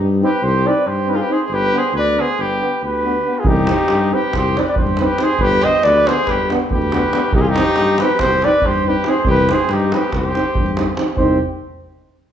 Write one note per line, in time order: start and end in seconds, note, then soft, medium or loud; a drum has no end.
0.00 0.23 G2 loud
0.21 0.31 C4 medium
0.21 0.30 D#4 medium
0.21 0.45 G4 medium
0.21 0.45 B4 medium
0.42 0.67 C2 loud
0.42 0.69 G4 medium
0.42 0.68 C5 loud
0.65 0.75 C4 medium
0.65 0.74 D#4 medium
0.65 0.89 B4 medium
0.65 0.89 D5 medium
0.86 1.21 G2 medium
0.86 1.11 G4 medium
0.86 1.11 C5 medium
1.08 1.16 C4 medium
1.08 1.17 D#4 medium
1.08 1.15 G4 medium
1.08 1.18 B4 medium
1.13 1.21 F4 medium
1.13 1.24 G#4 medium
1.20 1.34 G4 medium
1.20 1.34 B4 medium
1.29 1.37 C4 medium
1.29 1.38 D#4 medium
1.29 1.43 G#4 medium
1.29 1.47 C5 medium
1.43 1.55 G#4 medium
1.43 1.56 C5 medium
1.49 1.74 G1 medium
1.49 1.79 G4 loud
1.54 1.80 B4 loud
1.72 1.82 B3 medium
1.72 1.81 D4 medium
1.78 1.95 G#4 medium
1.78 1.97 C5 loud
1.93 2.17 D2 medium
1.93 2.21 B4 medium
1.98 2.23 D5 medium
2.16 2.27 B3 medium
2.16 2.25 D4 medium
2.16 2.42 G#4 medium
2.21 2.43 C5 medium
2.38 2.62 G1 medium
2.38 2.83 G4 medium
2.38 2.84 B4 medium
2.61 2.70 B3 medium
2.61 2.70 D4 medium
2.82 3.17 D2 medium
2.82 3.39 G4 medium
2.82 3.42 B4 loud
3.04 3.12 B3 medium
3.04 3.12 D4 medium
3.25 3.34 B3 medium
3.25 3.33 D4 soft
3.37 3.47 F4 medium
3.37 3.50 G#4 medium
3.44 3.69 C2 loud
3.44 4.15 D#4 loud
3.44 davul low loud
3.49 4.16 G4 loud
3.56 davul high soft
3.67 3.77 C4 medium
3.67 3.76 D#4 medium
3.67 davul high medium
3.78 davul high soft
3.88 4.13 G2 medium
3.88 davul high medium
4.12 4.21 C4 medium
4.12 4.21 D#4 soft
4.12 4.36 G4 medium
4.12 4.38 B4 medium
4.22 davul high soft
4.33 4.57 C2 medium
4.33 4.61 G4 loud
4.33 4.59 C5 loud
4.33 davul high medium
4.33 davul low medium
4.55 4.65 C4 medium
4.55 4.64 D#4 medium
4.55 4.62 D5 medium
4.55 davul high medium
4.60 4.63 B4 medium
4.60 4.67 B4 medium
4.60 4.67 D5 medium
4.67 4.77 D5 loud
4.67 davul high soft
4.71 4.79 B4 medium
4.76 5.11 G2 medium
4.76 5.02 C5 medium
4.76 davul low medium
4.81 5.03 G4 medium
4.87 davul high soft
4.97 5.08 C4 medium
4.97 5.07 D#4 medium
4.97 5.24 B4 loud
4.97 davul high medium
5.03 5.25 G4 medium
5.18 5.28 C4 medium
5.18 5.28 D#4 medium
5.18 davul high medium
5.22 5.44 G#4 medium
5.22 5.43 C5 loud
5.39 5.63 G1 loud
5.39 5.65 B4 loud
5.39 davul low medium
5.43 5.66 G4 loud
5.62 5.71 B3 medium
5.62 5.71 D4 medium
5.62 5.86 C5 medium
5.62 5.86 D#5 loud
5.62 davul high medium
5.73 davul high soft
5.83 6.08 D2 loud
5.83 6.10 B4 medium
5.83 6.09 D5 loud
5.83 davul high medium
6.06 6.16 B3 medium
6.06 6.14 D4 medium
6.06 6.32 G#4 medium
6.06 6.29 C5 loud
6.06 davul high medium
6.17 davul high soft
6.27 6.51 G1 medium
6.27 6.52 G4 medium
6.27 6.51 B4 loud
6.27 davul high medium
6.27 davul low medium
6.50 6.59 B3 medium
6.50 6.59 D4 medium
6.50 davul high medium
6.60 davul high soft
6.71 7.05 D2 medium
6.71 7.36 G4 medium
6.71 7.36 B4 medium
6.71 davul low medium
6.82 davul high soft
6.92 7.01 B3 medium
6.92 7.01 D4 medium
6.92 davul high medium
7.13 7.22 B3 medium
7.13 7.21 D4 medium
7.13 davul high medium
7.32 7.57 C2 loud
7.32 7.43 D#4 loud
7.32 7.42 G4 loud
7.32 davul low loud
7.41 7.51 F4 medium
7.41 7.49 G#4 medium
7.45 8.01 G4 loud
7.45 davul high soft
7.50 8.03 D#4 loud
7.56 7.65 C4 medium
7.56 7.64 D#4 medium
7.56 davul high medium
7.65 davul high soft
7.76 8.01 G2 medium
7.76 davul high medium
7.98 8.09 C4 medium
7.98 8.08 D#4 medium
7.98 8.23 G4 loud
7.98 8.22 B4 loud
7.98 davul high medium
8.09 davul high soft
8.19 8.45 C2 medium
8.19 8.46 G4 loud
8.19 8.46 C5 loud
8.19 davul high medium
8.19 davul low medium
8.42 8.52 C4 medium
8.42 8.52 D#4 medium
8.42 8.68 B4 medium
8.42 8.68 D5 loud
8.42 davul high medium
8.52 davul high soft
8.62 8.99 G2 medium
8.62 davul low medium
8.66 8.87 G4 medium
8.66 8.90 C5 loud
8.74 davul high soft
8.86 8.95 C4 medium
8.86 8.94 D#4 medium
8.86 9.10 G4 loud
8.86 9.12 B4 medium
9.04 9.15 C4 medium
9.04 9.14 D#4 medium
9.04 9.26 G#4 medium
9.04 davul high medium
9.10 9.28 C5 loud
9.25 9.50 C2 loud
9.25 9.53 G4 medium
9.25 davul low medium
9.30 9.54 B4 loud
9.37 davul high soft
9.49 9.58 C4 medium
9.49 9.58 D#4 medium
9.49 9.74 G#4 medium
9.49 9.73 C5 loud
9.49 davul high medium
9.59 davul high soft
9.69 9.93 G2 loud
9.69 9.95 G4 loud
9.69 davul high medium
9.73 9.98 D#4 medium
9.80 davul high soft
9.92 10.02 C4 medium
9.92 10.00 D#4 medium
9.92 10.13 B4 medium
9.92 davul high medium
9.97 10.15 G4 medium
10.02 davul high soft
10.12 10.37 C2 medium
10.12 10.95 G4 medium
10.12 10.94 C5 medium
10.12 davul high medium
10.12 davul low medium
10.23 davul high soft
10.35 10.45 C4 medium
10.35 10.43 D#4 medium
10.35 davul high medium
10.45 davul high soft
10.55 10.90 G2 medium
10.55 davul low medium
10.66 davul high soft
10.77 10.86 C4 medium
10.77 10.86 D#4 medium
10.77 davul high medium
10.88 davul high soft
10.97 11.06 C4 medium
10.97 11.06 D#4 medium
10.97 davul high medium
11.08 davul high soft
11.17 11.39 C2 medium
11.17 11.39 C4 medium
11.17 11.39 D#4 medium
11.17 11.39 G4 medium
11.17 11.39 C5 medium
11.17 davul low medium